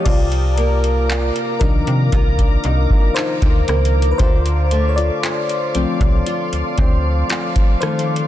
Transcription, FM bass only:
\new Staff \with { instrumentName = "FM bass" } { \clef bass \time 4/4 \key c \dorian \tempo 4 = 58 c,4~ c,16 r16 c,16 c16 c,8 c,16 r8 d,16 des,8 | d,4 r8 c,16 c,16 r16 d,16 d,8 r4 | }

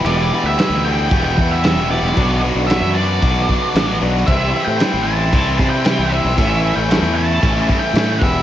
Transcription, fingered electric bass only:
\new Staff \with { instrumentName = "Fingered electric bass" } { \clef bass \time 4/4 \key a \dorian \tempo 4 = 114 e,,8 r16 d,16 r16 d,8. e,,8 e,8. e,,8 e,,16 | b,,8. b,,8 fis,8. b,,8 r8 a,,8 b,,8 | c,8 r16 a,16 r16 a,,8. c,8 c8. c,8 b,,16 | a,,8. a,,8 e,8. a,,8 r8 a,8 e,,8 | }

